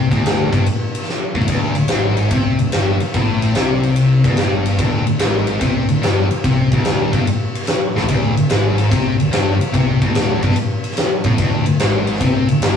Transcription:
0.00 0.10 C3 loud
0.11 0.50 D1 medium
0.11 0.51 D2 loud
0.11 kick medium
0.11 ride medium
0.26 snare loud
0.26 ride medium
0.51 0.65 G1 medium
0.51 0.65 G2 medium
0.51 kick loud
0.51 ride medium
0.66 ride medium
0.95 ride medium
1.03 snare soft
1.09 snare medium
1.35 1.48 A1 medium
1.35 1.48 A2 loud
1.35 kick medium
1.42 kick medium
1.48 1.74 D1 medium
1.48 1.76 D2 medium
1.48 kick loud
1.48 ride loud
1.75 1.89 D1 medium
1.75 1.91 D2 medium
1.75 ride medium
1.88 2.28 G#1 medium
1.88 2.31 G#2 loud
1.88 snare loud
1.88 ride medium
2.17 ride medium
2.31 2.57 C2 medium
2.31 2.59 C3 loud
2.31 kick loud
2.31 ride medium
2.59 2.72 D1 medium
2.59 2.71 D2 medium
2.59 ride medium
2.72 2.99 G1 medium
2.72 3.00 G2 loud
2.72 snare loud
2.72 ride medium
3.00 muted distorted electric guitar stroke medium
3.00 muted picked electric bass stroke soft
3.00 ride medium
3.14 3.53 A1 medium
3.14 3.55 A2 loud
3.14 kick loud
3.14 ride medium
3.42 ride medium
3.55 4.21 C2 medium
3.55 4.24 C3 loud
3.55 snare loud
3.55 ride medium
3.83 ride medium
3.96 ride medium
4.24 4.37 D1 medium
4.24 4.38 D2 medium
4.24 kick loud
4.24 ride medium
4.37 4.76 G1 medium
4.37 4.78 G2 loud
4.37 snare loud
4.37 ride medium
4.66 ride medium
4.78 5.05 D1 medium
4.78 5.05 D2 loud
4.78 kick loud
4.78 ride loud
5.06 5.19 D1 medium
5.06 5.17 D2 medium
5.06 ride medium
5.19 5.59 G#1 medium
5.19 5.60 G#2 loud
5.19 snare loud
5.19 ride medium
5.47 ride medium
5.61 5.86 C2 medium
5.61 5.88 C3 loud
5.61 kick loud
5.61 ride medium
5.87 6.01 D1 medium
5.87 6.00 D2 medium
5.87 ride medium
6.02 6.28 G1 medium
6.02 6.29 G2 loud
6.02 snare loud
6.02 ride medium
6.30 muted distorted electric guitar stroke medium
6.30 muted picked electric bass stroke soft
6.30 ride medium
6.44 6.70 C2 medium
6.44 6.71 C3 loud
6.44 kick loud
6.44 ride medium
6.72 7.10 D1 medium
6.72 7.12 D2 loud
6.72 kick loud
6.72 ride medium
6.85 snare loud
6.85 ride medium
7.13 7.26 G1 medium
7.13 7.26 G2 loud
7.13 kick loud
7.13 ride medium
7.27 ride medium
7.55 ride medium
7.63 snare soft
7.67 snare loud
7.67 ride medium
7.96 8.08 A1 medium
7.96 8.08 A2 loud
7.96 snare medium
8.02 floor tom medium
8.08 8.35 D1 medium
8.08 8.35 D2 loud
8.08 kick loud
8.08 ride loud
8.36 8.49 D1 medium
8.36 8.48 D2 medium
8.36 ride medium
8.49 8.89 G#1 medium
8.49 8.90 G#2 loud
8.49 snare loud
8.49 ride medium
8.78 ride medium
8.90 9.17 C2 medium
8.90 9.18 C3 medium
8.90 kick loud
8.90 ride medium
9.18 9.32 D1 medium
9.18 9.30 D2 medium
9.18 ride medium
9.31 9.59 G1 medium
9.31 9.59 G2 loud
9.31 snare loud
9.31 ride medium
9.59 muted distorted electric guitar stroke medium
9.59 muted picked electric bass stroke soft
9.59 ride medium
9.72 10.00 C2 loud
9.72 10.00 C3 loud
9.72 kick loud
9.72 ride medium
10.01 10.40 D1 medium
10.01 10.42 D2 loud
10.01 kick loud
10.01 ride medium
10.15 snare loud
10.15 ride medium
10.42 10.56 G1 medium
10.42 10.56 G2 loud
10.42 kick loud
10.42 ride medium
10.51 snare soft
10.56 ride medium
10.84 ride medium
10.91 snare soft
10.97 snare loud
10.97 ride medium
11.24 11.38 A1 medium
11.24 11.38 A2 loud
11.24 kick loud
11.24 ride medium
11.38 11.64 D1 medium
11.38 11.66 D2 loud
11.38 kick loud
11.38 ride medium
11.66 11.79 D1 medium
11.66 11.78 D2 medium
11.66 ride medium
11.79 12.19 G#1 medium
11.79 12.21 G#2 loud
11.79 snare loud
11.79 ride medium
12.07 ride medium
12.15 snare soft
12.20 12.47 C2 medium
12.20 12.48 C3 loud
12.20 kick loud
12.20 ride loud
12.48 12.61 D1 medium
12.48 12.60 D2 medium
12.48 ride medium
12.61 12.77 G1 medium
12.61 12.77 G2 medium
12.61 snare loud
12.61 ride medium

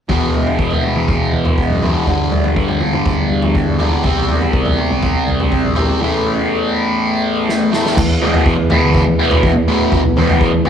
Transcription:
0.09 1.81 E2 medium
0.09 0.31 E2 medium
0.09 7.96 E2 medium
0.09 1.82 B2 medium
0.09 1.81 E3 medium
0.09 kick medium
0.09 floor tom medium
0.34 floor tom medium
0.46 floor tom medium
0.59 0.81 E2 medium
0.59 kick loud
0.71 floor tom medium
0.83 mid tom medium
0.96 1.18 E2 medium
0.96 mid tom medium
1.08 kick loud
1.08 floor tom medium
1.33 1.55 E2 medium
1.45 floor tom medium
1.58 kick medium
1.70 1.92 F#2 medium
1.82 2.07 E2 medium
1.82 2.07 B2 medium
1.82 2.06 E3 medium
1.82 floor tom medium
1.94 mid tom medium
2.07 2.29 G2 medium
2.07 3.78 G2 medium
2.07 3.79 D3 medium
2.07 3.78 G3 medium
2.07 kick medium
2.07 floor tom medium
2.32 floor tom medium
2.44 floor tom medium
2.56 2.78 G2 medium
2.56 kick loud
2.68 floor tom medium
2.80 mid tom medium
2.93 3.15 G2 medium
2.93 mid tom medium
3.06 kick loud
3.06 floor tom medium
3.30 3.52 G2 medium
3.42 floor tom medium
3.55 kick loud
3.66 3.88 G2 medium
3.79 4.04 G2 medium
3.79 4.03 D3 medium
3.79 4.03 G3 medium
3.79 floor tom medium
3.92 mid tom medium
4.04 4.26 C2 medium
4.04 5.75 C3 medium
4.04 5.76 G3 medium
4.04 5.75 C4 medium
4.04 kick loud
4.04 floor tom medium
4.29 floor tom medium
4.41 floor tom medium
4.53 4.75 C2 medium
4.53 kick medium
4.65 floor tom medium
4.78 mid tom medium
4.90 5.12 C2 medium
4.90 mid tom medium
5.02 kick medium
5.02 floor tom medium
5.27 5.49 C2 medium
5.40 floor tom medium
5.52 kick medium
5.65 5.86 A#1 medium
5.76 6.01 C3 medium
5.76 6.00 G3 medium
5.76 5.99 C4 medium
5.76 floor tom medium
5.88 mid tom medium
6.01 7.71 A2 medium
6.01 7.72 E3 medium
6.01 7.71 A3 medium
7.49 snare medium
7.72 7.97 A2 medium
7.72 7.96 E3 medium
7.72 7.95 A3 medium
7.72 snare medium
7.86 snare medium
7.96 8.19 E2 medium
7.96 10.69 E2 medium
7.96 10.69 A3 medium
7.96 10.69 B3 medium
7.96 10.69 E4 medium
7.96 10.69 B4 medium
7.96 kick loud
7.96 floor tom medium
7.96 crash loud
8.22 8.54 E2 medium
8.22 8.54 B2 medium
8.22 8.53 E3 medium
8.22 mid tom medium
8.34 floor tom medium
8.46 8.67 E2 medium
8.46 kick loud
8.70 9.03 E2 medium
8.70 9.03 B2 medium
8.70 9.02 E3 medium
8.70 floor tom medium
8.70 mid tom medium
8.82 9.04 D2 medium
8.94 kick loud
8.94 floor tom medium
9.19 9.51 E2 medium
9.19 9.51 B2 medium
9.19 9.51 E3 medium
9.31 floor tom medium
9.43 9.65 E2 medium
9.43 kick loud
9.67 10.01 E2 medium
9.67 9.89 A2 medium
9.67 10.00 B2 medium
9.67 10.00 E3 medium
9.92 kick loud
9.92 floor tom medium
10.04 10.15 B1 medium
10.17 10.38 E2 medium
10.17 10.49 E2 medium
10.17 10.49 B2 medium
10.17 10.49 E3 medium
10.17 mid tom medium
10.29 floor tom medium
10.41 10.62 E2 medium
10.41 kick loud
10.65 10.69 B2 medium
10.65 10.69 E3 medium
10.65 floor tom medium
10.65 mid tom medium

